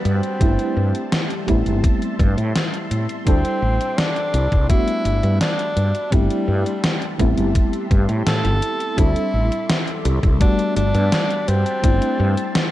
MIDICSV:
0, 0, Header, 1, 6, 480
1, 0, Start_track
1, 0, Key_signature, 1, "major"
1, 0, Tempo, 714286
1, 274, Time_signature, 4, 2, 24, 8
1, 8543, End_track
2, 0, Start_track
2, 0, Title_t, "String machine"
2, 0, Program_c, 0, 50
2, 0, Note_on_c, 0, 55, 85
2, 0, Note_on_c, 0, 78, 76
2, 0, Note_on_c, 0, 81, 78
2, 0, Note_on_c, 0, 83, 91
2, 266, Note_off_c, 0, 78, 0
2, 266, Note_off_c, 0, 81, 0
2, 267, Note_off_c, 0, 83, 0
2, 278, Note_on_c, 0, 81, 80
2, 279, Note_on_c, 0, 76, 77
2, 279, Note_on_c, 0, 84, 93
2, 2177, Note_off_c, 0, 81, 0
2, 2193, Note_on_c, 0, 86, 89
2, 3130, Note_off_c, 0, 76, 0
2, 3130, Note_off_c, 0, 84, 0
2, 3144, Note_off_c, 0, 86, 0
2, 3152, Note_on_c, 0, 78, 74
2, 3153, Note_on_c, 0, 81, 78
2, 3153, Note_on_c, 0, 83, 91
2, 4088, Note_off_c, 0, 55, 0
2, 4104, Note_off_c, 0, 78, 0
2, 4104, Note_off_c, 0, 83, 0
2, 4114, Note_on_c, 0, 67, 85
2, 4115, Note_on_c, 0, 76, 73
2, 4116, Note_on_c, 0, 84, 88
2, 4827, Note_off_c, 0, 76, 0
2, 4828, Note_off_c, 0, 84, 0
2, 4836, Note_on_c, 0, 76, 78
2, 4837, Note_on_c, 0, 84, 93
2, 6007, Note_off_c, 0, 81, 0
2, 6015, Note_off_c, 0, 67, 0
2, 6023, Note_off_c, 0, 76, 0
2, 6024, Note_off_c, 0, 84, 0
2, 6037, Note_on_c, 0, 55, 83
2, 6037, Note_on_c, 0, 76, 78
2, 6037, Note_on_c, 0, 84, 75
2, 6037, Note_on_c, 0, 86, 90
2, 6986, Note_off_c, 0, 76, 0
2, 6986, Note_off_c, 0, 84, 0
2, 6986, Note_off_c, 0, 86, 0
2, 6996, Note_on_c, 0, 81, 76
2, 6997, Note_on_c, 0, 78, 76
2, 6997, Note_on_c, 0, 83, 95
2, 7946, Note_off_c, 0, 78, 0
2, 7946, Note_off_c, 0, 83, 0
2, 7957, Note_on_c, 0, 76, 74
2, 7957, Note_on_c, 0, 84, 92
2, 8543, Note_off_c, 0, 55, 0
2, 8543, Note_off_c, 0, 76, 0
2, 8543, Note_off_c, 0, 81, 0
2, 8543, Note_off_c, 0, 84, 0
2, 8543, End_track
3, 0, Start_track
3, 0, Title_t, "Tenor saxophone"
3, 0, Program_c, 1, 66
3, 36, Note_on_c, 1, 60, 89
3, 968, Note_off_c, 1, 60, 0
3, 2197, Note_on_c, 1, 60, 108
3, 2676, Note_on_c, 1, 62, 113
3, 2686, Note_off_c, 1, 60, 0
3, 3151, Note_off_c, 1, 62, 0
3, 3155, Note_on_c, 1, 64, 111
3, 3608, Note_off_c, 1, 64, 0
3, 3636, Note_on_c, 1, 62, 109
3, 4116, Note_on_c, 1, 55, 92
3, 4126, Note_off_c, 1, 62, 0
3, 5075, Note_off_c, 1, 55, 0
3, 5556, Note_on_c, 1, 69, 116
3, 6035, Note_on_c, 1, 64, 106
3, 6046, Note_off_c, 1, 69, 0
3, 6755, Note_off_c, 1, 64, 0
3, 6994, Note_on_c, 1, 62, 114
3, 7217, Note_off_c, 1, 62, 0
3, 7232, Note_on_c, 1, 62, 117
3, 7716, Note_on_c, 1, 60, 103
3, 7726, Note_off_c, 1, 62, 0
3, 8543, Note_off_c, 1, 60, 0
3, 8543, End_track
4, 0, Start_track
4, 0, Title_t, "FM electric piano"
4, 0, Program_c, 2, 5
4, 0, Control_c, 2, 64, 127
4, 0, Note_on_c, 2, 55, 79
4, 0, Note_on_c, 2, 57, 74
4, 0, Note_on_c, 2, 59, 72
4, 0, Note_on_c, 2, 62, 74
4, 0, Note_on_c, 2, 66, 86
4, 222, Note_off_c, 2, 55, 0
4, 225, Note_off_c, 2, 57, 0
4, 227, Note_off_c, 2, 59, 0
4, 229, Note_off_c, 2, 62, 0
4, 232, Note_off_c, 2, 66, 0
4, 265, Note_on_c, 2, 55, 80
4, 272, Note_on_c, 2, 57, 70
4, 277, Note_on_c, 2, 60, 74
4, 281, Note_on_c, 2, 62, 73
4, 283, Control_c, 2, 64, 0
4, 286, Note_on_c, 2, 64, 87
4, 411, Control_c, 2, 64, 127
4, 943, Note_off_c, 2, 55, 0
4, 946, Note_off_c, 2, 57, 0
4, 948, Note_off_c, 2, 60, 0
4, 950, Note_off_c, 2, 62, 0
4, 953, Note_off_c, 2, 64, 0
4, 985, Note_on_c, 2, 55, 89
4, 990, Note_on_c, 2, 57, 84
4, 995, Note_on_c, 2, 59, 81
4, 999, Note_on_c, 2, 60, 79
4, 1005, Control_c, 2, 64, 0
4, 1005, Note_on_c, 2, 64, 100
4, 1137, Control_c, 2, 64, 127
4, 2142, Note_off_c, 2, 55, 0
4, 2145, Note_off_c, 2, 57, 0
4, 2147, Note_off_c, 2, 59, 0
4, 2149, Note_off_c, 2, 60, 0
4, 2152, Note_off_c, 2, 64, 0
4, 2186, Note_on_c, 2, 55, 74
4, 2192, Note_on_c, 2, 60, 72
4, 2197, Note_on_c, 2, 62, 69
4, 2202, Note_on_c, 2, 64, 72
4, 2203, Control_c, 2, 64, 0
4, 2206, Note_on_c, 2, 69, 85
4, 2334, Control_c, 2, 64, 127
4, 3103, Note_off_c, 2, 55, 0
4, 3106, Note_off_c, 2, 60, 0
4, 3108, Note_off_c, 2, 62, 0
4, 3111, Note_off_c, 2, 64, 0
4, 3113, Note_off_c, 2, 69, 0
4, 3145, Note_on_c, 2, 55, 78
4, 3150, Note_on_c, 2, 57, 75
4, 3155, Note_on_c, 2, 59, 78
4, 3160, Note_on_c, 2, 62, 75
4, 3164, Control_c, 2, 64, 0
4, 3166, Note_on_c, 2, 66, 89
4, 3297, Control_c, 2, 64, 127
4, 4063, Note_off_c, 2, 55, 0
4, 4065, Note_off_c, 2, 57, 0
4, 4067, Note_off_c, 2, 59, 0
4, 4070, Note_off_c, 2, 62, 0
4, 4073, Note_off_c, 2, 66, 0
4, 4104, Note_on_c, 2, 55, 80
4, 4110, Note_on_c, 2, 57, 70
4, 4115, Note_on_c, 2, 60, 73
4, 4120, Note_on_c, 2, 62, 72
4, 4125, Control_c, 2, 64, 0
4, 4125, Note_on_c, 2, 64, 85
4, 4250, Control_c, 2, 64, 127
4, 4782, Note_off_c, 2, 55, 0
4, 4785, Note_off_c, 2, 57, 0
4, 4787, Note_off_c, 2, 60, 0
4, 4790, Note_off_c, 2, 62, 0
4, 4792, Note_off_c, 2, 64, 0
4, 4826, Note_on_c, 2, 55, 94
4, 4832, Note_on_c, 2, 57, 82
4, 4835, Note_on_c, 2, 59, 84
4, 4841, Note_on_c, 2, 60, 84
4, 4842, Control_c, 2, 64, 0
4, 4846, Note_on_c, 2, 64, 100
4, 4960, Control_c, 2, 64, 127
4, 5983, Note_off_c, 2, 55, 0
4, 5986, Note_off_c, 2, 57, 0
4, 5988, Note_off_c, 2, 59, 0
4, 5990, Note_off_c, 2, 60, 0
4, 5993, Note_off_c, 2, 64, 0
4, 6024, Note_on_c, 2, 55, 79
4, 6029, Note_on_c, 2, 60, 71
4, 6033, Note_on_c, 2, 62, 71
4, 6040, Note_on_c, 2, 64, 72
4, 6042, Control_c, 2, 64, 0
4, 6044, Note_on_c, 2, 69, 87
4, 6175, Control_c, 2, 64, 127
4, 6942, Note_off_c, 2, 55, 0
4, 6945, Note_off_c, 2, 60, 0
4, 6947, Note_off_c, 2, 62, 0
4, 6950, Note_off_c, 2, 64, 0
4, 6952, Note_off_c, 2, 69, 0
4, 6983, Note_on_c, 2, 55, 84
4, 6989, Note_on_c, 2, 57, 77
4, 6994, Note_on_c, 2, 59, 76
4, 7000, Note_on_c, 2, 62, 73
4, 7004, Control_c, 2, 64, 0
4, 7004, Note_on_c, 2, 66, 90
4, 7121, Control_c, 2, 64, 127
4, 7901, Note_off_c, 2, 55, 0
4, 7905, Note_off_c, 2, 57, 0
4, 7907, Note_off_c, 2, 59, 0
4, 7910, Note_off_c, 2, 62, 0
4, 7912, Note_off_c, 2, 66, 0
4, 7944, Note_on_c, 2, 55, 75
4, 7949, Note_on_c, 2, 57, 69
4, 7954, Note_on_c, 2, 60, 72
4, 7959, Note_on_c, 2, 62, 73
4, 7963, Control_c, 2, 64, 0
4, 7964, Note_on_c, 2, 64, 86
4, 8081, Control_c, 2, 64, 127
4, 8543, Note_off_c, 2, 55, 0
4, 8543, Note_off_c, 2, 57, 0
4, 8543, Note_off_c, 2, 60, 0
4, 8543, Note_off_c, 2, 62, 0
4, 8543, Note_off_c, 2, 64, 0
4, 8543, End_track
5, 0, Start_track
5, 0, Title_t, "Fretless electric bass"
5, 0, Program_c, 3, 35
5, 34, Note_on_c, 3, 43, 82
5, 135, Note_off_c, 3, 43, 0
5, 274, Note_on_c, 3, 31, 88
5, 375, Note_off_c, 3, 31, 0
5, 515, Note_on_c, 3, 43, 78
5, 615, Note_off_c, 3, 43, 0
5, 994, Note_on_c, 3, 33, 102
5, 1095, Note_off_c, 3, 33, 0
5, 1116, Note_on_c, 3, 31, 78
5, 1214, Note_off_c, 3, 31, 0
5, 1474, Note_on_c, 3, 43, 92
5, 1575, Note_off_c, 3, 43, 0
5, 1595, Note_on_c, 3, 45, 91
5, 1694, Note_off_c, 3, 45, 0
5, 1954, Note_on_c, 3, 45, 78
5, 2055, Note_off_c, 3, 45, 0
5, 2195, Note_on_c, 3, 38, 92
5, 2296, Note_off_c, 3, 38, 0
5, 2434, Note_on_c, 3, 33, 81
5, 2535, Note_off_c, 3, 33, 0
5, 2914, Note_on_c, 3, 36, 101
5, 3015, Note_off_c, 3, 36, 0
5, 3037, Note_on_c, 3, 36, 78
5, 3135, Note_off_c, 3, 36, 0
5, 3394, Note_on_c, 3, 31, 86
5, 3495, Note_off_c, 3, 31, 0
5, 3517, Note_on_c, 3, 43, 88
5, 3615, Note_off_c, 3, 43, 0
5, 3874, Note_on_c, 3, 43, 84
5, 3975, Note_off_c, 3, 43, 0
5, 4115, Note_on_c, 3, 31, 98
5, 4216, Note_off_c, 3, 31, 0
5, 4354, Note_on_c, 3, 43, 84
5, 4455, Note_off_c, 3, 43, 0
5, 4834, Note_on_c, 3, 33, 102
5, 4935, Note_off_c, 3, 33, 0
5, 4956, Note_on_c, 3, 31, 82
5, 5054, Note_off_c, 3, 31, 0
5, 5315, Note_on_c, 3, 43, 91
5, 5415, Note_off_c, 3, 43, 0
5, 5435, Note_on_c, 3, 45, 96
5, 5534, Note_off_c, 3, 45, 0
5, 5554, Note_on_c, 3, 45, 78
5, 5655, Note_off_c, 3, 45, 0
5, 5676, Note_on_c, 3, 31, 100
5, 5774, Note_off_c, 3, 31, 0
5, 6034, Note_on_c, 3, 38, 92
5, 6135, Note_off_c, 3, 38, 0
5, 6273, Note_on_c, 3, 33, 84
5, 6375, Note_off_c, 3, 33, 0
5, 6754, Note_on_c, 3, 36, 101
5, 6855, Note_off_c, 3, 36, 0
5, 6875, Note_on_c, 3, 36, 83
5, 6974, Note_off_c, 3, 36, 0
5, 7233, Note_on_c, 3, 31, 87
5, 7335, Note_off_c, 3, 31, 0
5, 7356, Note_on_c, 3, 43, 97
5, 7454, Note_off_c, 3, 43, 0
5, 7715, Note_on_c, 3, 43, 82
5, 7816, Note_off_c, 3, 43, 0
5, 7953, Note_on_c, 3, 31, 92
5, 8055, Note_off_c, 3, 31, 0
5, 8195, Note_on_c, 3, 43, 85
5, 8296, Note_off_c, 3, 43, 0
5, 8543, End_track
6, 0, Start_track
6, 0, Title_t, "Drums"
6, 35, Note_on_c, 9, 42, 61
6, 103, Note_off_c, 9, 42, 0
6, 157, Note_on_c, 9, 42, 37
6, 224, Note_off_c, 9, 42, 0
6, 274, Note_on_c, 9, 36, 113
6, 276, Note_on_c, 9, 42, 86
6, 342, Note_off_c, 9, 36, 0
6, 343, Note_off_c, 9, 42, 0
6, 397, Note_on_c, 9, 42, 35
6, 464, Note_off_c, 9, 42, 0
6, 637, Note_on_c, 9, 42, 38
6, 705, Note_off_c, 9, 42, 0
6, 755, Note_on_c, 9, 38, 110
6, 755, Note_on_c, 9, 42, 85
6, 822, Note_off_c, 9, 38, 0
6, 822, Note_off_c, 9, 42, 0
6, 877, Note_on_c, 9, 42, 38
6, 944, Note_off_c, 9, 42, 0
6, 994, Note_on_c, 9, 36, 56
6, 995, Note_on_c, 9, 42, 66
6, 1062, Note_off_c, 9, 36, 0
6, 1063, Note_off_c, 9, 42, 0
6, 1117, Note_on_c, 9, 42, 37
6, 1184, Note_off_c, 9, 42, 0
6, 1234, Note_on_c, 9, 36, 113
6, 1236, Note_on_c, 9, 42, 86
6, 1302, Note_off_c, 9, 36, 0
6, 1303, Note_off_c, 9, 42, 0
6, 1358, Note_on_c, 9, 42, 35
6, 1425, Note_off_c, 9, 42, 0
6, 1475, Note_on_c, 9, 36, 99
6, 1477, Note_on_c, 9, 42, 60
6, 1542, Note_off_c, 9, 36, 0
6, 1544, Note_off_c, 9, 42, 0
6, 1599, Note_on_c, 9, 42, 37
6, 1666, Note_off_c, 9, 42, 0
6, 1717, Note_on_c, 9, 38, 104
6, 1717, Note_on_c, 9, 42, 84
6, 1784, Note_off_c, 9, 38, 0
6, 1784, Note_off_c, 9, 42, 0
6, 1839, Note_on_c, 9, 42, 37
6, 1906, Note_off_c, 9, 42, 0
6, 1956, Note_on_c, 9, 42, 63
6, 2023, Note_off_c, 9, 42, 0
6, 2078, Note_on_c, 9, 42, 39
6, 2145, Note_off_c, 9, 42, 0
6, 2195, Note_on_c, 9, 36, 108
6, 2195, Note_on_c, 9, 42, 86
6, 2262, Note_off_c, 9, 36, 0
6, 2262, Note_off_c, 9, 42, 0
6, 2317, Note_on_c, 9, 42, 39
6, 2384, Note_off_c, 9, 42, 0
6, 2558, Note_on_c, 9, 42, 40
6, 2625, Note_off_c, 9, 42, 0
6, 2676, Note_on_c, 9, 38, 104
6, 2676, Note_on_c, 9, 42, 82
6, 2743, Note_off_c, 9, 38, 0
6, 2743, Note_off_c, 9, 42, 0
6, 2797, Note_on_c, 9, 42, 38
6, 2865, Note_off_c, 9, 42, 0
6, 2915, Note_on_c, 9, 42, 67
6, 2983, Note_off_c, 9, 42, 0
6, 3037, Note_on_c, 9, 36, 100
6, 3037, Note_on_c, 9, 42, 38
6, 3104, Note_off_c, 9, 36, 0
6, 3104, Note_off_c, 9, 42, 0
6, 3155, Note_on_c, 9, 36, 116
6, 3155, Note_on_c, 9, 42, 93
6, 3222, Note_off_c, 9, 36, 0
6, 3223, Note_off_c, 9, 42, 0
6, 3277, Note_on_c, 9, 42, 39
6, 3344, Note_off_c, 9, 42, 0
6, 3395, Note_on_c, 9, 42, 67
6, 3463, Note_off_c, 9, 42, 0
6, 3517, Note_on_c, 9, 42, 35
6, 3584, Note_off_c, 9, 42, 0
6, 3635, Note_on_c, 9, 38, 107
6, 3635, Note_on_c, 9, 42, 87
6, 3702, Note_off_c, 9, 38, 0
6, 3702, Note_off_c, 9, 42, 0
6, 3757, Note_on_c, 9, 42, 38
6, 3824, Note_off_c, 9, 42, 0
6, 3875, Note_on_c, 9, 42, 63
6, 3943, Note_off_c, 9, 42, 0
6, 3997, Note_on_c, 9, 42, 37
6, 4064, Note_off_c, 9, 42, 0
6, 4115, Note_on_c, 9, 36, 111
6, 4115, Note_on_c, 9, 42, 93
6, 4182, Note_off_c, 9, 36, 0
6, 4182, Note_off_c, 9, 42, 0
6, 4237, Note_on_c, 9, 42, 39
6, 4304, Note_off_c, 9, 42, 0
6, 4477, Note_on_c, 9, 42, 41
6, 4544, Note_off_c, 9, 42, 0
6, 4595, Note_on_c, 9, 38, 111
6, 4595, Note_on_c, 9, 42, 92
6, 4662, Note_off_c, 9, 38, 0
6, 4662, Note_off_c, 9, 42, 0
6, 4716, Note_on_c, 9, 42, 42
6, 4784, Note_off_c, 9, 42, 0
6, 4834, Note_on_c, 9, 36, 57
6, 4835, Note_on_c, 9, 42, 66
6, 4901, Note_off_c, 9, 36, 0
6, 4902, Note_off_c, 9, 42, 0
6, 4956, Note_on_c, 9, 42, 40
6, 5023, Note_off_c, 9, 42, 0
6, 5074, Note_on_c, 9, 36, 114
6, 5075, Note_on_c, 9, 42, 95
6, 5141, Note_off_c, 9, 36, 0
6, 5142, Note_off_c, 9, 42, 0
6, 5196, Note_on_c, 9, 42, 40
6, 5263, Note_off_c, 9, 42, 0
6, 5314, Note_on_c, 9, 36, 101
6, 5315, Note_on_c, 9, 42, 69
6, 5381, Note_off_c, 9, 36, 0
6, 5382, Note_off_c, 9, 42, 0
6, 5436, Note_on_c, 9, 42, 39
6, 5503, Note_off_c, 9, 42, 0
6, 5555, Note_on_c, 9, 38, 114
6, 5555, Note_on_c, 9, 42, 87
6, 5622, Note_off_c, 9, 38, 0
6, 5622, Note_off_c, 9, 42, 0
6, 5676, Note_on_c, 9, 42, 41
6, 5743, Note_off_c, 9, 42, 0
6, 5795, Note_on_c, 9, 42, 68
6, 5862, Note_off_c, 9, 42, 0
6, 5916, Note_on_c, 9, 42, 38
6, 5983, Note_off_c, 9, 42, 0
6, 6034, Note_on_c, 9, 36, 120
6, 6034, Note_on_c, 9, 42, 93
6, 6101, Note_off_c, 9, 36, 0
6, 6102, Note_off_c, 9, 42, 0
6, 6156, Note_on_c, 9, 42, 39
6, 6223, Note_off_c, 9, 42, 0
6, 6396, Note_on_c, 9, 42, 42
6, 6464, Note_off_c, 9, 42, 0
6, 6515, Note_on_c, 9, 38, 115
6, 6515, Note_on_c, 9, 42, 97
6, 6582, Note_off_c, 9, 38, 0
6, 6582, Note_off_c, 9, 42, 0
6, 6636, Note_on_c, 9, 42, 41
6, 6703, Note_off_c, 9, 42, 0
6, 6754, Note_on_c, 9, 42, 70
6, 6821, Note_off_c, 9, 42, 0
6, 6875, Note_on_c, 9, 36, 108
6, 6876, Note_on_c, 9, 42, 42
6, 6942, Note_off_c, 9, 36, 0
6, 6943, Note_off_c, 9, 42, 0
6, 6993, Note_on_c, 9, 42, 96
6, 6994, Note_on_c, 9, 36, 121
6, 7060, Note_off_c, 9, 42, 0
6, 7061, Note_off_c, 9, 36, 0
6, 7115, Note_on_c, 9, 42, 40
6, 7182, Note_off_c, 9, 42, 0
6, 7234, Note_on_c, 9, 42, 69
6, 7301, Note_off_c, 9, 42, 0
6, 7355, Note_on_c, 9, 42, 39
6, 7422, Note_off_c, 9, 42, 0
6, 7474, Note_on_c, 9, 38, 114
6, 7474, Note_on_c, 9, 42, 94
6, 7541, Note_off_c, 9, 38, 0
6, 7541, Note_off_c, 9, 42, 0
6, 7596, Note_on_c, 9, 42, 41
6, 7663, Note_off_c, 9, 42, 0
6, 7715, Note_on_c, 9, 42, 72
6, 7782, Note_off_c, 9, 42, 0
6, 7836, Note_on_c, 9, 42, 42
6, 7903, Note_off_c, 9, 42, 0
6, 7954, Note_on_c, 9, 36, 117
6, 7954, Note_on_c, 9, 42, 95
6, 8021, Note_off_c, 9, 36, 0
6, 8022, Note_off_c, 9, 42, 0
6, 8076, Note_on_c, 9, 42, 41
6, 8144, Note_off_c, 9, 42, 0
6, 8315, Note_on_c, 9, 42, 43
6, 8382, Note_off_c, 9, 42, 0
6, 8435, Note_on_c, 9, 38, 120
6, 8435, Note_on_c, 9, 42, 90
6, 8502, Note_off_c, 9, 38, 0
6, 8502, Note_off_c, 9, 42, 0
6, 8543, End_track
0, 0, End_of_file